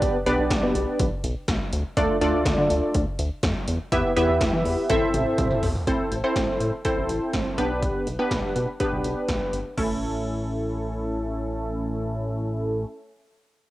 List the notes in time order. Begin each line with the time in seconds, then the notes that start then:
Already playing: B1 B3 D4 G4 B4 D5
0.02 kick, closed hi-hat
0.26 B1 B3 D4 G4 B4 D5, closed hi-hat
0.38 B1
0.50 B1, kick, snare, closed hi-hat
0.63 B2
0.75 B1, closed hi-hat
0.99 B1, kick, closed hi-hat
1.24 B1, closed hi-hat
1.48 B1, kick, snare, closed hi-hat
1.73 D2, closed hi-hat
1.97 D2 A3 D4 F4 A4 D5, kick, closed hi-hat
2.21 D2 A3 D4 F4 A4 D5, closed hi-hat
2.34 D2
2.46 D2, kick, snare, closed hi-hat
2.58 D3
2.70 D2, closed hi-hat
2.94 D2, kick, closed hi-hat
3.19 D2, closed hi-hat
3.43 F2, kick, snare, closed hi-hat
3.68 E2, closed hi-hat
3.92 E2 B3 E4 G4 B4 E5, kick, closed hi-hat
4.16 E2 B3 E4 G4 B4 E5, closed hi-hat
4.29 E2
4.41 E2, kick, snare, closed hi-hat
4.53 E3
4.65 E2, open hi-hat
4.90 A1 C4 E4 A4 C5 E5, kick, closed hi-hat, high tom
5.14 A1, closed hi-hat, mid tom
5.38 C2, kick, closed hi-hat, mid tom
5.51 mid tom
5.63 B1, floor tom, open hi-hat
5.75 floor tom
5.87 A1 C4 E4 A4 C5, kick, closed hi-hat
6.12 A1, closed hi-hat
6.24 C4 E4 A4 C5
6.36 A1, kick, snare, closed hi-hat
6.60 A2, closed hi-hat
6.85 C4 E4 A4 C5, kick, closed hi-hat
6.97 A1
7.09 A1, closed hi-hat
7.33 A1, kick, snare, closed hi-hat
7.58 B1 B3 D4 G4 B4, closed hi-hat
7.82 kick, closed hi-hat
8.07 B1, closed hi-hat
8.19 B3 D4 G4 B4
8.31 B1, kick, snare, closed hi-hat
8.56 B2, closed hi-hat
8.80 B3 D4 G4 B4, kick, closed hi-hat
8.92 B1
9.04 B1, closed hi-hat
9.28 B1, kick, snare, closed hi-hat
9.53 G1, closed hi-hat
9.77 A1 A3 C#4 E4 A4, kick, crash